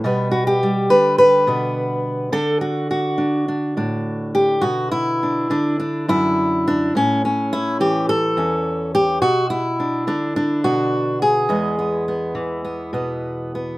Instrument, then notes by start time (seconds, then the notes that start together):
steel-string acoustic guitar
0.04 B2 G3 B3 B4
0.31 F#4
0.47 G4
0.63 G3
0.90 D3 B4
1.18 B4
1.47 B2 B3
2.32 D3 A4
2.61 F#4
2.91 F#4
3.18 D4
3.48 D4
3.77 A2 D4
4.35 G4
4.61 B2 F#4
4.92 E4
5.23 D4
5.50 D3 D4
5.80 D4
6.08 F#2 E4
6.68 D4
6.95 A2 C#4
7.25 C#4
7.53 E4
7.80 E3 G4
8.09 A4
8.37 E2 C#4
8.95 G4
9.22 B2 F#4
9.50 E4
9.80 D4
10.07 D3 D4
10.36 D4
10.64 B2 F#4
11.22 G#4
11.49 E2 G#3 B3
11.79 B3
12.08 B3
12.35 E3
12.65 B3
12.93 B2 B3
13.55 B3